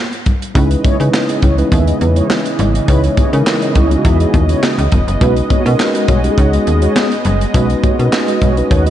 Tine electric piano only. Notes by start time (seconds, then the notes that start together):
0.55 G#3 C#4 D#4 E4 B4
0.99 G#3 C#4 D#4 E4 B4
1.58 G#3 C#4 D#4 E4 B4
2.88 G#3 C#4 D#4 E4 C#5
3.33 G#3 C#4 D#4 E4 A#4
3.90 G#3 C#4 D#4 E4 F4
3.98 F#4
5.20 G#3 C#4 D#4 F#4 B4
5.65 G#3 C#4 D#4 F#4 A#4
6.24 G#3 C#4 D#4 F#4 G4
6.31 G#4
7.54 G#3 C#4 D#4 F#4 B4
7.99 G#3 C#4 D#4 F#4 A#4
8.06 B4
8.57 G#3 C#4 D#4 F#4 B4